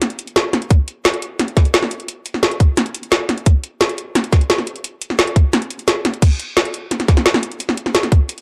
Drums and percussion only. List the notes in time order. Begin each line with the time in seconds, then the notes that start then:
0.02 snare, closed hi-hat
0.10 closed hi-hat
0.19 closed hi-hat
0.27 closed hi-hat
0.36 snare, closed hi-hat
0.53 snare, closed hi-hat
0.62 closed hi-hat
0.70 kick, closed hi-hat
0.88 closed hi-hat
1.05 snare, closed hi-hat
1.14 closed hi-hat
1.22 closed hi-hat
1.39 snare, closed hi-hat
1.48 closed hi-hat
1.57 kick, snare, closed hi-hat
1.65 closed hi-hat
1.74 snare, closed hi-hat
1.83 snare
1.91 closed hi-hat
2.00 closed hi-hat
2.08 closed hi-hat
2.26 closed hi-hat
2.34 snare
2.43 snare, closed hi-hat
2.51 closed hi-hat
2.60 kick, closed hi-hat
2.77 snare, closed hi-hat
2.86 closed hi-hat
2.95 closed hi-hat
3.03 closed hi-hat
3.12 snare, closed hi-hat
3.29 snare, closed hi-hat
3.38 closed hi-hat
3.46 kick, closed hi-hat
3.64 closed hi-hat
3.81 snare, closed hi-hat
3.89 closed hi-hat
3.98 closed hi-hat
4.15 snare, closed hi-hat
4.24 closed hi-hat
4.33 kick, snare, closed hi-hat
4.41 closed hi-hat
4.50 snare, closed hi-hat
4.58 snare
4.67 closed hi-hat
4.76 closed hi-hat
4.84 closed hi-hat
5.01 closed hi-hat
5.10 snare
5.19 snare, closed hi-hat
5.27 closed hi-hat
5.36 kick, closed hi-hat
5.53 snare, closed hi-hat
5.62 closed hi-hat
5.70 closed hi-hat
5.79 closed hi-hat
5.88 snare, closed hi-hat
6.05 snare, closed hi-hat
6.14 closed hi-hat
6.22 kick, closed hi-hat, crash
6.40 closed hi-hat
6.57 snare, closed hi-hat
6.65 closed hi-hat
6.74 closed hi-hat
6.91 snare, closed hi-hat
7.00 snare, closed hi-hat
7.08 kick, snare, closed hi-hat
7.17 snare, closed hi-hat
7.26 snare, closed hi-hat
7.34 snare
7.43 closed hi-hat
7.52 closed hi-hat
7.60 closed hi-hat
7.69 snare
7.77 closed hi-hat
7.86 snare
7.95 snare, closed hi-hat
8.03 snare, closed hi-hat
8.12 kick, closed hi-hat
8.29 closed hi-hat
8.38 closed hi-hat